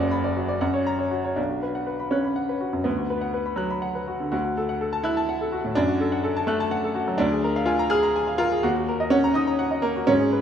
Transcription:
Already playing: F#1 F#2 F#5
0.00 D5
0.11 B5
0.24 D5
0.36 F#4
0.48 D5
0.61 F#2 F#5
0.74 C#5
0.87 A#5
0.99 C#5
1.11 F#4
1.25 C#5
1.36 B1 D4
1.49 F#4
1.63 B4
1.75 F#5
1.86 B4
1.99 B5
2.11 C#4 F#6
2.24 B5
2.36 F#5
2.49 B4
2.61 F#4
2.73 F#2
2.84 D2 B3
2.98 F#4
3.10 B4
3.21 F#5
3.34 B4
3.46 B5
3.56 F#3 F#6
3.70 B5
3.82 F#5
3.95 B4
4.08 F#4
4.20 D3
4.32 D2 F#4
4.45 F#4
4.57 A4
4.69 F#5
4.81 A4
4.93 A5
5.04 E4 F#6
5.17 A5
5.29 F#5
5.41 A4
5.52 F#4
5.65 A2
5.75 F#2 D4
5.88 F#4
6.00 A4
6.12 F#5
6.24 A4
6.37 A5
6.47 A3 F#6
6.60 A5
6.71 F#5
6.84 A4
6.95 F#4
7.08 F#3
7.18 D2 D4
7.32 G#4
7.44 A#4
7.56 F5
7.66 F4 G#5
7.79 A#5
7.90 G#4 F6
8.03 A#5
8.16 G#5
8.27 F5
8.38 F4 A#4
8.52 G#4
8.63 D#2 F#4
8.76 F#4
8.89 A#4
9.00 D#5
9.10 C#4 F#5
9.24 A#5
9.34 D#4 D#6
9.47 A#5
9.59 F#5
9.71 D#5
9.82 A#3 A#4
9.96 F#4
10.07 G#2 C#4
10.20 G#4
10.32 B4

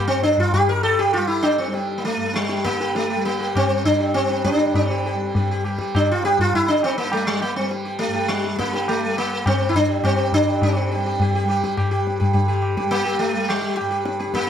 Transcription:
Already playing: G2 D3 G3
0.08 C4
0.17 G2
0.23 D4, tabla te
0.38 F4, tabla ge
0.53 G4, tabla tin, tabla ge
0.67 D3 A#4
0.83 A4, tabla na
0.99 G4
1.13 F4, tabla na
1.17 G3
1.27 E4
1.43 D4, tabla na
1.58 C4
1.66 G3
1.74 G4, tabla te
1.98 A#3
2.04 A3, tabla te
2.16 G2
2.34 G3, tabla te
2.49 G4, tabla te
2.64 D3 A#3, tabla ke
2.80 G4, tabla te
2.95 A3, tabla te
3.10 G4
3.15 G3
3.25 A#3, tabla te
3.40 G4
3.55 C4, tabla na, tabla ge
3.66 G3
3.85 D4, tabla ge
4.00 G4
4.14 G2 C4, tabla te
4.30 G4, tabla te
4.44 D4, tabla ke
4.59 G4, tabla te
4.66 D3
4.74 C4, tabla tin, tabla ge
4.91 G4
5.06 G4
5.14 G3
5.35 G4, tabla tin, tabla ge
5.51 G4
5.65 G3 G4, tabla na
5.79 G4, tabla ke
5.95 D4, tabla na, tabla ge
6.11 G2 F4
6.24 G4, tabla te
6.39 F4, tabla ge
6.54 E4, tabla tin, tabla ge
6.62 D3
6.68 D4
6.83 C4, tabla na
6.98 A#3
7.11 G3 A3, tabla na
7.27 G3
7.42 A#3, tabla na
7.56 G3 C4
7.71 G4, tabla te
7.85 G4
7.99 A3, tabla te
8.07 G2
8.15 G4
8.28 G3, tabla te
8.44 tabla te
8.56 D3 A#3, tabla ke
8.73 G4, tabla te
8.88 A3, tabla na
9.04 G3
9.17 A#3, tabla na
9.46 C4, tabla na, tabla ge
9.52 G3
9.69 E4
9.74 D4, tabla ge
9.89 G4
9.99 G2
10.04 C4, tabla na, tabla ge
10.18 G4
10.32 D4, tabla ge
10.47 D3 G4
10.62 C4, tabla tin, tabla ge
10.77 G4
10.92 G3 G4
11.06 G4
11.20 G4, tabla tin, tabla ge
11.35 G4
11.44 G3
11.49 G4, tabla na
11.64 G4, tabla ke
11.77 G4, tabla na, tabla ge
11.90 G2 G4
12.07 tabla te
12.20 G4, tabla ge
12.33 G4, tabla tin, tabla ge
12.38 D3
12.48 G4
12.62 tabla na
12.77 G4, tabla ke
12.85 G3
12.91 A#3, tabla na
13.06 G4
13.19 A3, tabla na
13.33 G3 G4
13.49 G3, tabla na
13.62 G4
13.77 G2 G4, tabla na
13.91 G4
14.05 G4, tabla te
14.19 G4, tabla te
14.27 D3
14.34 A#3, tabla ke

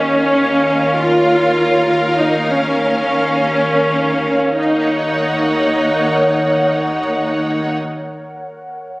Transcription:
Already playing: D#2 C#4 A#4 C#5 F5
0.99 F4
2.18 D#4 D#5
2.48 C#4
4.58 D#2 D#4 A#4 C#5 F#5

